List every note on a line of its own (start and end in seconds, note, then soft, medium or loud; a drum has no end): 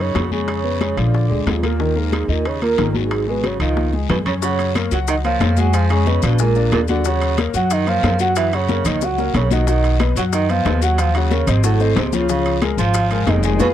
0.00 0.11 F#2 medium
0.00 0.32 C#3 medium
0.00 0.12 D#4 medium
0.00 0.32 C#5 loud
0.00 0.12 D#5 medium
0.14 0.92 F2 medium
0.14 0.28 F#3 medium
0.14 0.28 F#4 medium
0.14 high bongo medium
0.14 low bongo medium
0.14 high conga medium
0.14 high timbale medium
0.14 low timbale medium
0.14 short guiro medium
0.31 0.99 C#3 medium
0.31 0.58 G#3 medium
0.31 0.58 G#4 medium
0.31 1.01 C#5 loud
0.31 high conga medium
0.31 short guiro medium
0.48 high bongo medium
0.48 high conga soft
0.48 high timbale medium
0.48 long guiro medium
0.64 0.78 B3 medium
0.64 0.78 B4 medium
0.64 high conga soft
0.80 0.94 G#3 medium
0.80 0.94 G#4 medium
0.80 high bongo medium
0.80 high conga medium
0.80 high timbale medium
0.80 short guiro medium
0.97 1.28 A#1 medium
0.97 1.49 D3 medium
0.97 1.24 F3 medium
0.97 1.24 F4 medium
0.97 1.51 D5 loud
0.97 high bongo soft
0.97 high timbale medium
0.97 short guiro medium
1.14 high bongo medium
1.14 high conga soft
1.14 long guiro medium
1.30 1.46 D2 medium
1.30 1.57 G#3 medium
1.30 1.57 G#4 medium
1.30 high bongo soft
1.30 high conga soft
1.46 2.23 D#2 medium
1.46 1.65 F2 medium
1.46 1.67 F4 medium
1.46 high bongo medium
1.46 low bongo medium
1.46 high conga medium
1.46 high timbale medium
1.46 low timbale medium
1.46 short guiro medium
1.63 1.98 A#2 medium
1.63 1.77 A#3 medium
1.63 1.77 A#4 medium
1.63 1.99 A#4 loud
1.63 high bongo soft
1.63 high conga medium
1.63 high timbale medium
1.63 short guiro medium
1.79 1.93 D#3 medium
1.79 1.93 D#4 medium
1.79 high bongo medium
1.79 high conga soft
1.79 long guiro medium
1.96 2.31 G#2 medium
1.96 2.23 A#3 medium
1.96 2.32 G#4 medium
1.96 2.23 A#4 medium
1.96 high conga soft
2.13 high bongo medium
2.13 high conga medium
2.13 high timbale medium
2.13 short guiro medium
2.28 2.74 D#2 medium
2.28 2.47 A#2 medium
2.28 2.56 D#4 medium
2.28 2.48 A#4 medium
2.28 2.56 D#5 medium
2.28 short guiro medium
2.45 2.62 C#3 medium
2.45 2.62 C#5 medium
2.45 high bongo medium
2.45 high conga soft
2.45 high timbale medium
2.45 long guiro medium
2.62 2.97 A#2 medium
2.62 2.75 A#3 medium
2.62 2.76 A#4 medium
2.62 2.98 A#4 medium
2.62 high conga soft
2.62 high timbale medium
2.78 3.55 G#1 medium
2.78 2.91 D#3 medium
2.78 2.92 D#4 medium
2.78 high bongo medium
2.78 low bongo medium
2.78 high conga medium
2.78 high timbale medium
2.78 low timbale medium
2.78 short guiro medium
2.94 3.29 G#2 medium
2.94 3.22 F#3 medium
2.94 3.22 F#4 medium
2.94 3.31 G#4 medium
2.94 high conga medium
2.94 short guiro medium
3.11 high bongo medium
3.11 high conga soft
3.11 high timbale medium
3.11 long guiro medium
3.27 3.45 B2 medium
3.27 3.41 G#3 medium
3.27 3.42 G#4 medium
3.27 3.47 B4 medium
3.27 high conga soft
3.44 3.60 C#3 medium
3.44 3.57 F#3 medium
3.44 3.58 F#4 medium
3.44 3.61 C#5 medium
3.44 high bongo medium
3.44 high conga medium
3.44 high timbale medium
3.44 short guiro medium
3.60 4.06 C#2 medium
3.60 3.96 D#3 medium
3.60 3.88 F3 medium
3.60 3.88 F4 medium
3.60 4.07 D#5 medium
3.60 high bongo soft
3.60 high timbale medium
3.60 short guiro medium
3.77 high bongo medium
3.77 high conga medium
3.77 long guiro medium
3.93 4.21 G#3 medium
3.93 4.21 G#4 medium
3.93 high bongo soft
3.93 high conga medium
4.09 4.86 F#2 medium
4.09 4.17 B2 medium
4.09 4.18 B4 loud
4.09 high bongo medium
4.09 low bongo medium
4.09 low conga medium
4.09 high timbale medium
4.09 low timbale medium
4.09 short guiro medium
4.26 4.33 C#3 medium
4.26 4.40 C#4 medium
4.26 4.40 C#5 medium
4.26 4.35 C#5 medium
4.26 high bongo soft
4.26 low conga medium
4.26 high timbale medium
4.26 short guiro medium
4.42 4.73 C#3 medium
4.42 4.70 F#3 medium
4.42 4.70 F#4 medium
4.42 4.74 C#5 loud
4.42 4.70 F#5 medium
4.42 high bongo medium
4.42 high conga soft
4.42 long guiro medium
4.42 maracas medium
4.59 high bongo soft
4.59 high conga soft
4.59 high timbale medium
4.59 maracas soft
4.75 4.89 A#3 medium
4.75 4.90 A#4 medium
4.75 4.90 C#5 medium
4.75 high bongo medium
4.75 high conga medium
4.75 high timbale medium
4.75 low timbale medium
4.75 short guiro medium
4.75 maracas soft
4.91 5.37 C#2 medium
4.91 5.19 F#3 medium
4.91 4.99 F#3 medium
4.91 5.19 F#4 medium
4.91 5.19 F#5 medium
4.91 5.00 F#5 loud
4.91 high bongo soft
4.91 short guiro medium
4.91 maracas medium
5.07 5.16 D#3 medium
5.07 5.17 D#5 loud
5.07 high bongo medium
5.07 high conga soft
5.07 high timbale medium
5.07 long guiro medium
5.07 maracas medium
5.24 5.59 F3 medium
5.24 5.38 A#3 medium
5.24 5.38 A#4 medium
5.24 5.38 C#5 medium
5.24 5.61 F5 loud
5.24 high conga soft
5.24 high timbale medium
5.24 maracas soft
5.40 6.17 F2 loud
5.40 5.54 A#3 medium
5.40 5.55 A#4 medium
5.40 5.55 C#5 medium
5.40 high bongo medium
5.40 low bongo medium
5.40 high conga medium
5.40 high timbale medium
5.40 low timbale medium
5.40 short guiro medium
5.40 maracas soft
5.57 5.75 F#3 medium
5.57 5.84 G#3 medium
5.57 5.84 G#4 medium
5.57 5.77 F#5 loud
5.57 5.85 G#5 loud
5.57 high bongo soft
5.57 high conga medium
5.57 short guiro medium
5.57 maracas medium
5.73 5.92 F3 medium
5.73 5.94 F5 loud
5.73 high bongo medium
5.73 high timbale medium
5.73 long guiro medium
5.73 maracas medium
5.89 6.25 C#3 medium
5.89 6.04 G#3 medium
5.89 6.04 G#4 medium
5.89 6.27 C#5 loud
5.89 6.04 G#5 medium
5.89 high conga soft
5.89 high timbale medium
5.89 maracas soft
6.06 6.20 B3 medium
6.06 6.20 B4 medium
6.06 6.20 D#5 medium
6.06 high bongo medium
6.06 high conga medium
6.06 low timbale medium
6.06 short guiro medium
6.06 maracas soft
6.22 6.69 A#1 medium
6.22 6.39 B2 medium
6.22 6.37 D4 medium
6.22 6.40 B4 medium
6.22 6.37 D5 medium
6.22 6.37 F5 medium
6.22 high bongo soft
6.22 high conga soft
6.22 low conga medium
6.22 high timbale medium
6.22 short guiro medium
6.22 maracas medium
6.39 6.70 A#2 medium
6.39 6.53 G#3 medium
6.39 6.53 G#4 medium
6.39 6.71 A#4 loud
6.39 6.53 G#5 medium
6.39 high bongo medium
6.39 high conga soft
6.39 long guiro medium
6.39 maracas medium
6.55 6.83 D4 medium
6.55 6.83 D5 medium
6.55 6.83 F5 medium
6.55 high bongo soft
6.55 high conga soft
6.55 maracas soft
6.72 7.48 D#2 medium
6.72 6.80 A#2 medium
6.72 6.81 A#4 loud
6.72 high bongo medium
6.72 low bongo medium
6.72 high conga medium
6.72 high timbale medium
6.72 low timbale medium
6.72 short guiro medium
6.72 maracas soft
6.88 7.07 D3 medium
6.88 7.02 F#3 loud
6.88 7.02 F#4 medium
6.88 7.09 D5 loud
6.88 7.02 F#5 loud
6.88 high bongo soft
6.88 high conga medium
6.88 short guiro medium
6.88 maracas medium
7.04 7.38 C#3 medium
7.04 7.32 F#3 medium
7.04 7.32 F#4 medium
7.04 7.39 C#5 loud
7.04 7.32 F#5 medium
7.04 high bongo medium
7.04 long guiro medium
7.04 maracas medium
7.21 high bongo soft
7.21 high conga soft
7.21 high timbale medium
7.21 maracas soft
7.38 7.51 A#3 medium
7.38 7.51 A#4 medium
7.38 7.52 C#5 medium
7.38 high bongo medium
7.38 high conga medium
7.38 high timbale medium
7.38 low timbale medium
7.38 short guiro medium
7.38 maracas soft
7.54 8.00 F#2 medium
7.54 7.81 F#3 medium
7.54 7.73 F#3 medium
7.54 7.81 F#4 medium
7.54 7.81 F#5 medium
7.54 7.74 F#5 loud
7.54 high bongo soft
7.54 short guiro medium
7.54 maracas medium
7.70 7.89 D#3 medium
7.70 7.89 D#5 loud
7.70 high bongo medium
7.70 high conga soft
7.70 high timbale medium
7.70 long guiro medium
7.70 maracas medium
7.87 8.20 F3 medium
7.87 8.00 A#3 medium
7.87 8.00 A#4 medium
7.87 8.01 C#5 medium
7.87 8.20 F5 loud
7.87 high conga soft
7.87 high timbale medium
7.87 maracas soft
8.03 8.80 F#2 medium
8.03 8.17 A#3 medium
8.03 8.17 A#4 medium
8.03 8.17 C#5 medium
8.03 high bongo medium
8.03 low bongo medium
8.03 high conga medium
8.03 high timbale medium
8.03 low timbale medium
8.03 short guiro medium
8.03 maracas soft
8.19 8.47 F#3 medium
8.19 8.35 F#3 medium
8.19 8.47 F#4 medium
8.19 8.47 F#5 loud
8.19 8.36 F#5 loud
8.19 high bongo soft
8.19 short guiro medium
8.19 maracas medium
8.36 8.55 E3 medium
8.36 8.56 E5 loud
8.36 high bongo medium
8.36 high conga soft
8.36 high timbale medium
8.36 long guiro medium
8.36 maracas loud
8.52 8.87 C#3 medium
8.52 8.66 F#3 medium
8.52 8.66 F#4 medium
8.52 8.89 C#5 loud
8.52 8.66 F#5 medium
8.52 high conga soft
8.52 high timbale medium
8.52 maracas soft
8.68 8.83 A#3 medium
8.68 8.83 A#4 medium
8.68 8.83 C#5 medium
8.68 high bongo medium
8.68 high conga medium
8.68 low timbale medium
8.68 short guiro medium
8.68 maracas soft
8.85 9.31 C#2 medium
8.85 9.04 D#3 medium
8.85 8.99 A#3 medium
8.85 8.99 A#4 medium
8.85 8.99 C#5 medium
8.85 9.05 D#5 loud
8.85 high bongo soft
8.85 high conga soft
8.85 low conga medium
8.85 high timbale medium
8.85 short guiro medium
8.85 maracas medium
9.01 9.16 F#3 medium
9.01 9.35 F#3 medium
9.01 9.16 F#4 medium
9.01 9.16 F#5 medium
9.01 9.36 F#5 loud
9.01 high bongo medium
9.01 high conga soft
9.01 long guiro medium
9.01 maracas medium
9.18 9.45 A#3 medium
9.18 9.45 A#4 medium
9.18 9.46 C#5 medium
9.18 high bongo medium
9.18 high conga soft
9.18 maracas soft
9.34 10.11 B1 medium
9.34 9.50 C#3 medium
9.34 9.51 C#5 loud
9.34 low bongo medium
9.34 high conga medium
9.34 high timbale medium
9.34 low timbale medium
9.34 short guiro medium
9.34 maracas soft
9.51 9.67 D#3 medium
9.51 9.64 F#3 medium
9.51 9.65 F#4 medium
9.51 9.67 D#5 loud
9.51 9.65 F#5 medium
9.51 low bongo medium
9.51 high conga medium
9.51 short guiro medium
9.51 maracas medium
9.67 9.98 D#3 medium
9.67 9.94 F#3 medium
9.67 9.95 F#4 medium
9.67 9.99 D#5 loud
9.67 9.95 F#5 medium
9.67 high bongo medium
9.67 high conga soft
9.67 long guiro medium
9.67 maracas medium
9.84 high bongo soft
9.84 high conga soft
9.84 high timbale medium
9.84 maracas soft
10.00 10.14 B3 medium
10.00 10.14 B4 medium
10.00 10.14 D#5 medium
10.00 high bongo medium
10.00 high conga loud
10.00 high timbale medium
10.00 low timbale medium
10.00 short guiro medium
10.00 maracas soft
10.16 10.62 F#2 medium
10.16 10.43 F#3 medium
10.16 10.24 F#3 medium
10.16 10.44 F#4 medium
10.16 10.44 F#5 medium
10.16 10.25 F#5 medium
10.16 high bongo soft
10.16 short guiro medium
10.16 maracas medium
10.32 10.51 D#3 medium
10.32 10.52 D#5 loud
10.32 high bongo medium
10.32 high conga soft
10.32 high timbale medium
10.32 long guiro medium
10.32 maracas loud
10.49 10.84 F3 medium
10.49 10.63 B3 medium
10.49 10.63 B4 medium
10.49 10.63 D#5 medium
10.49 10.85 F5 loud
10.49 high conga soft
10.49 high timbale medium
10.49 maracas soft
10.65 11.42 D#2 medium
10.65 10.79 B3 medium
10.65 10.79 B4 medium
10.65 10.80 D#5 medium
10.65 high bongo medium
10.65 low bongo medium
10.65 high conga medium
10.65 high timbale medium
10.65 low timbale medium
10.65 short guiro medium
10.65 maracas soft
10.82 11.01 F#3 medium
10.82 11.09 F#3 loud
10.82 11.09 F#4 medium
10.82 11.09 F#5 medium
10.82 11.01 F#5 loud
10.82 high bongo soft
10.82 short guiro medium
10.82 maracas medium
10.98 11.17 F3 medium
10.98 11.18 F5 loud
10.98 high bongo medium
10.98 high timbale medium
10.98 long guiro medium
10.98 maracas medium
11.15 11.50 C#3 medium
11.15 11.28 F#3 medium
11.15 11.28 F#4 medium
11.15 11.51 C#5 loud
11.15 11.29 F#5 medium
11.15 high conga soft
11.15 high timbale medium
11.15 maracas soft
11.31 11.45 A#3 medium
11.31 11.45 A#4 medium
11.31 11.45 C#5 medium
11.31 high bongo medium
11.31 high conga loud
11.31 low timbale medium
11.31 short guiro medium
11.31 maracas soft
11.47 11.93 G#1 medium
11.47 11.64 C3 medium
11.47 11.61 C4 medium
11.47 11.61 C5 medium
11.47 11.65 C5 medium
11.47 11.61 D#5 medium
11.47 high bongo soft
11.47 high conga soft
11.47 low conga medium
11.47 high timbale medium
11.47 short guiro medium
11.47 maracas medium
11.63 11.95 A2 medium
11.63 11.77 F#3 medium
11.63 11.77 F#4 medium
11.63 11.95 A4 medium
11.63 11.78 F#5 medium
11.63 high bongo medium
11.63 high conga soft
11.63 long guiro medium
11.63 maracas medium
11.80 12.07 C4 medium
11.80 12.07 C5 medium
11.80 12.07 D#5 medium
11.80 high bongo soft
11.80 high conga soft
11.80 maracas soft
11.96 12.72 C#2 loud
11.96 12.15 C3 medium
11.96 12.17 C5 medium
11.96 high bongo medium
11.96 low bongo medium
11.96 high conga medium
11.96 high timbale medium
11.96 low timbale medium
11.96 short guiro medium
11.96 maracas soft
12.12 12.29 C#3 medium
12.12 12.26 F3 loud
12.12 12.26 F4 medium
12.12 12.30 C#5 medium
12.12 12.27 F5 loud
12.12 high bongo soft
12.12 high conga medium
12.12 short guiro medium
12.12 maracas medium
12.29 12.60 C#3 medium
12.29 12.56 F3 medium
12.29 12.56 F4 medium
12.29 12.61 C#5 loud
12.29 12.56 F5 medium
12.29 high bongo medium
12.29 high conga soft
12.29 long guiro medium
12.29 maracas medium
12.45 high bongo soft
12.45 high conga soft
12.45 high timbale medium
12.45 maracas soft
12.62 12.75 G#3 medium
12.62 12.75 G#4 medium
12.62 12.76 A#4 medium
12.62 high bongo medium
12.62 high conga loud
12.62 high timbale loud
12.62 low timbale medium
12.62 short guiro medium
12.62 maracas soft
12.77 13.23 G#1 medium
12.77 13.05 F3 medium
12.77 13.29 F3 medium
12.77 13.05 F4 medium
12.77 13.06 F5 medium
12.77 13.30 F5 loud
12.77 high bongo soft
12.77 short guiro medium
12.77 maracas medium
12.94 high bongo medium
12.94 high conga soft
12.94 high timbale medium
12.94 long guiro medium
12.94 maracas loud
13.10 13.24 G#3 medium
13.10 13.25 G#4 medium
13.10 13.25 A#4 medium
13.10 high conga soft
13.10 high timbale medium
13.10 maracas soft
13.26 13.57 F1 medium
13.26 13.60 D#3 medium
13.26 13.41 G#3 medium
13.26 13.41 G#4 medium
13.26 13.41 A#4 medium
13.26 13.61 D#5 loud
13.26 high bongo medium
13.26 low bongo medium
13.26 high conga medium
13.26 high timbale medium
13.26 low timbale medium
13.26 short guiro medium
13.26 maracas soft
13.43 13.57 G#3 medium
13.43 13.57 G#4 medium
13.43 13.58 G#5 medium
13.43 high bongo soft
13.43 short guiro medium
13.43 maracas medium
13.59 13.72 F2 medium
13.59 13.68 B2 loud
13.59 13.70 F4 medium
13.59 13.71 G#4 loud
13.59 13.71 B4 loud
13.59 low bongo loud
13.59 high conga medium
13.59 high timbale medium
13.59 long guiro medium
13.59 maracas loud